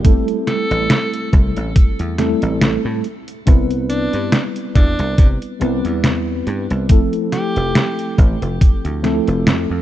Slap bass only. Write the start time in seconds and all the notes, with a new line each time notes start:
0.71 A1
1.33 C2
1.57 A1
2.00 E2
2.42 A1
2.85 A2
3.47 C2
4.14 G2
4.75 E2
4.99 C2
5.18 C3
5.61 C2
5.85 E2
6.47 G2
6.71 C2
7.56 F1
8.18 A1
8.42 F1
8.85 D2
9.28 F1
9.47 F2
9.71 F2